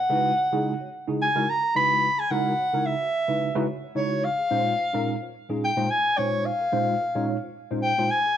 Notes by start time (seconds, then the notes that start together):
Already playing: F#5
0.09 C#3 G#3 D#4 E4 F#4 B4
0.37 F#4 C#5
0.52 C#3 G#3 D#4 E4 F#4 G#4
0.80 F#4 C#5
1.08 C#3 G#3 D#4 E4 F#4 G#4
1.22 G#5
1.35 C#3 G#3 D#4 E4 F#4 A#4
1.48 F#4 A#5
1.62 F#4 A#4
1.75 C#3 G#3 D#4 E4 F#4 B4 B5
2.17 F#4 G#4 G#5
2.31 C#3 G#3 D#4 E4 F#4 A#4 F#5
2.59 F#4 C#5
2.73 C#3 G#3 D#4 E4 F#4 A#4
2.86 E5
3.00 F#4 B4
3.28 C#3 G#3 D#4 E4 F#4 B4
3.55 C#3 G#3 D#4 E4 F#4 B4
3.68 F#4 C#5
3.83 F#4 C#5
3.95 C#3 G#3 D#4 E4 F#4 C#5
4.24 F5
4.39 F#4 G#4
4.51 A#2 G#3 C#4 D#4 F4 C5
4.79 F4 C5
4.93 A#2 G#3 C#4 D#4 F4 A#4
5.22 F4 C5
5.49 A#2 G#3 C#4 D#4 F4 G#4
5.65 G5
5.77 A#2 G#3 C#4 D#4 F4 C5
5.91 F4 D#5 G#5
6.05 F4 C5
6.18 A#2 G#3 C#4 D#4 F4 C5 C#5
6.46 F5
6.60 F4 A#4
6.72 A#2 G#3 C#4 D#4 F4 C5
7.15 A#2 G#3 C#4 D#4 F4 C#5
7.43 F4 C5
7.71 A#2 G#3 C#4 D#4 F4 C5
7.82 G5
7.98 A#2 G#3 C#4 D#4 F4 C5
8.11 G#5
8.25 F4 G#4